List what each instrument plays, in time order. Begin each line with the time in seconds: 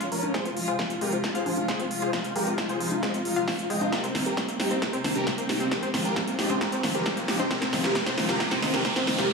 0.00 string section C#3 F3 G#3 F4, supersaw synth C#4, synth pluck F4, closed hi-hat
0.12 string section C#3 F3 G#3 F4, synth pluck F3, supersaw synth C#4 A#4, open hi-hat
0.23 supersaw synth C#4, closed hi-hat, high conga
0.34 string section C3 F3 G#3 F4, synth pluck G#3, supersaw synth G#4 C5, kick, snare, closed hi-hat
0.45 synth pluck C4, supersaw synth F4, closed hi-hat
0.57 string section C3 F3 G#3 F4, supersaw synth F4, open hi-hat
0.68 synth pluck F4, supersaw synth G#4 C5, closed hi-hat
0.79 string section C3 F3 G#3 F4, synth pluck F3, supersaw synth F4, kick, snare, closed hi-hat
0.90 supersaw synth F4, closed hi-hat
1.01 string section C3 F3 G#3 F4, synth pluck G#3, supersaw synth G4 A#4, open hi-hat
1.13 synth pluck C4, supersaw synth F4, closed hi-hat
1.24 string section C3 F3 G#3 F4, supersaw synth F4, kick, snare, closed hi-hat
1.35 synth pluck F4, supersaw synth G#4 C5, closed hi-hat
1.46 string section C3 F3 G#3 F4, synth pluck F3, supersaw synth F4, open hi-hat, high conga
1.57 string section C3 F3 G#3 F4, supersaw synth F4, closed hi-hat, high conga
1.68 string section C3 F3 G#3 F4, synth pluck G#3, supersaw synth G#4 C5, kick, snare, closed hi-hat
1.80 string section C3 F3 G#3 F4, synth pluck C4, supersaw synth F4, closed hi-hat
1.91 string section C3 F3 G#3 F4, supersaw synth F4, open hi-hat
2.02 synth pluck F4, supersaw synth G#4 C5, closed hi-hat
2.13 string section C3 F3 G#3 D#4, synth pluck F3, supersaw synth F4, kick, snare, closed hi-hat
2.24 supersaw synth F4, closed hi-hat
2.36 string section C3 F3 G#3 D#4, synth pluck G#3, supersaw synth G4 A#4, open hi-hat
2.47 synth pluck C4, supersaw synth F4, closed hi-hat
2.58 string section C3 F3 G#3 D#4, supersaw synth F4, kick, snare, closed hi-hat
2.69 synth pluck F4, supersaw synth G#4 C5, closed hi-hat
2.80 string section C3 F3 G#3 D#4, synth pluck F3, supersaw synth F4, open hi-hat
2.92 supersaw synth F4, closed hi-hat, high conga
3.03 string section C3 F3 G#3 D#4, synth pluck G#3, supersaw synth C5 D#5, kick, snare, closed hi-hat
3.14 synth pluck C4, supersaw synth F4, closed hi-hat
3.25 string section C3 F3 G#3 D#4, supersaw synth F4, open hi-hat
3.36 string section C3 F3 G#3 D#4, synth pluck F4, closed hi-hat
3.48 string section C3 F3 G#3 D#4, synth pluck F3, supersaw synth F4, kick, snare, open hi-hat
3.59 string section C3 F3 G#3 D#4, supersaw synth F4, closed hi-hat
3.70 string section C3 F3 G#3 D#4, synth pluck G#3, supersaw synth D#5 G5, open hi-hat
3.81 synth pluck C4, supersaw synth F4, closed hi-hat, high conga
3.92 string section C3 G3 A#3 D#4, supersaw synth G4 A#4, kick, snare, closed hi-hat, riser
4.03 synth pluck C4, supersaw synth C4, closed hi-hat
4.15 string section C3 G3 A#3 D#4, synth pluck D#3, supersaw synth C4, snare, open hi-hat
4.26 supersaw synth G4 A#4, closed hi-hat
4.37 string section C3 G3 A#3 D#4, synth pluck G3, supersaw synth C4, kick, snare, closed hi-hat
4.48 synth pluck A#3, supersaw synth C4, closed hi-hat
4.60 string section C3 G3 A#3 D#4, supersaw synth D#4 G4, snare, open hi-hat
4.71 synth pluck C4, supersaw synth C4, closed hi-hat
4.82 string section C3 G3 A#3 D#4, supersaw synth G4 A#4, kick, snare, closed hi-hat
4.93 supersaw synth C4, synth pluck C4, closed hi-hat
5.04 string section C3 G3 A#3 D#4, synth pluck D#3, supersaw synth C4, snare, open hi-hat, high conga
5.16 string section C3 G3 A#3 D#4, supersaw synth G4 A#4, closed hi-hat, high conga
5.27 string section C3 G3 A#3 D#4, synth pluck G3, supersaw synth C4, kick, snare, closed hi-hat
5.38 string section C3 G3 A#3 D#4, synth pluck A#3, supersaw synth C4, closed hi-hat
5.49 string section C3 G3 A#3 D#4, supersaw synth D#4 G4, snare, open hi-hat
5.60 synth pluck C4, supersaw synth C4, closed hi-hat
5.71 string section C#3 F3 G#3 F4, supersaw synth G4 A#4, kick, snare, closed hi-hat
5.83 synth pluck C4, supersaw synth C4, closed hi-hat
5.94 string section C#3 F3 G#3 F4, synth pluck D#3, supersaw synth C4, snare, open hi-hat
6.05 supersaw synth G4 A#4, closed hi-hat
6.16 string section C#3 F3 G#3 F4, synth pluck G3, supersaw synth C4, kick, snare, closed hi-hat
6.27 synth pluck A#3, supersaw synth C4, closed hi-hat
6.39 string section C#3 F3 G#3 F4, supersaw synth D#4 G4, snare, open hi-hat
6.50 synth pluck C4, supersaw synth C4, closed hi-hat, high conga
6.61 string section C#3 F3 G#3 F4, supersaw synth G4 A#4, kick, snare, closed hi-hat
6.72 synth pluck C4, supersaw synth C4, closed hi-hat
6.83 string section C#3 F3 G#3 F4, synth pluck D#3, supersaw synth C4, snare, open hi-hat
6.95 string section C#3 F3 G#3 F4, supersaw synth G4 A#4, closed hi-hat
7.06 string section C#3 F3 G#3 F4, synth pluck G3, supersaw synth C4, kick, snare, closed hi-hat
7.17 string section C#3 F3 G#3 F4, synth pluck A#3, supersaw synth C4, closed hi-hat
7.28 string section C#3 F3 G#3 F4, supersaw synth D#4 G4, snare, open hi-hat
7.39 supersaw synth C4, synth pluck C4, closed hi-hat, high conga
7.51 string section C3 F3 G#3 F4, supersaw synth G4 A#4, kick, snare, closed hi-hat
7.62 synth pluck C4, supersaw synth C4, snare, closed hi-hat
7.73 string section C3 F3 G#3 F4, synth pluck D#3, supersaw synth C4, snare, open hi-hat
7.84 supersaw synth G4 A#4, snare, closed hi-hat
7.95 string section C3 F3 G#3 F4, supersaw synth G4 A#4, kick, snare, closed hi-hat
8.06 supersaw synth C4, synth pluck C4, snare, closed hi-hat
8.18 string section C3 F3 G#3 F4, synth pluck D#3, supersaw synth C4, snare, open hi-hat
8.29 supersaw synth G4 A#4, snare, closed hi-hat
8.40 string section C3 F3 G#3 F4, supersaw synth G4 A#4, kick, snare, closed hi-hat
8.51 synth pluck C4, supersaw synth C4, snare, closed hi-hat
8.62 string section C3 F3 G#3 F4, synth pluck D#3, supersaw synth C4, snare, open hi-hat, high conga
8.74 string section C3 F3 G#3 F4, supersaw synth G4 A#4, snare, closed hi-hat, high conga
8.85 string section C3 F3 G#3 F4, supersaw synth G4 A#4, kick, snare, closed hi-hat
8.96 string section C3 F3 G#3 F4, synth pluck C4, supersaw synth C4, snare, closed hi-hat
9.07 string section C3 F3 G#3 F4, synth pluck D#3, supersaw synth C4, snare, open hi-hat
9.19 supersaw synth G4 A#4, snare, closed hi-hat
9.30 string section C3 F3 G#3 F4